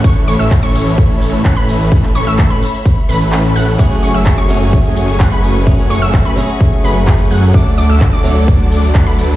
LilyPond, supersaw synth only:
\new Staff \with { instrumentName = "Supersaw synth" } { \time 4/4 \key a \major \tempo 4 = 128 <e a cis' a' cis''>8 <e a cis' a' cis''>16 <e a cis' a' e''>16 r16 <e a cis' a' cis''>4.~ <e a cis' a' cis''>16 <e a cis' a' fis''>16 <e a cis' a' b'>8.~ | <e a cis' a' b'>8 <e a cis' a' cis''>16 <e a cis' a' e''>8 <e a cis' a' b'>16 r4 <e a cis' a' b'>4 <e a cis' a' fis''>8 | <fis a cis' gis' cis''>8 <fis a cis' gis' cis''>16 <fis a cis' gis' e''>16 r16 <fis a cis' gis' cis''>4.~ <fis a cis' gis' cis''>16 <fis a cis' gis' fis''>16 <fis a cis' gis' b'>8.~ | <fis a cis' gis' b'>8 <fis a cis' gis' cis''>16 <fis a cis' gis' e''>8 <fis a cis' gis' b'>16 r4 <fis a cis' gis' b'>4 <fis a cis' gis' fis''>8 |
<fis a d' a' d''>8 <fis a d' a' d''>16 <fis a d' a' e''>16 r16 <fis a d' a' d''>4.~ <fis a d' a' d''>16 <fis a d' a' fis''>16 <fis a d' a' b'>8. | }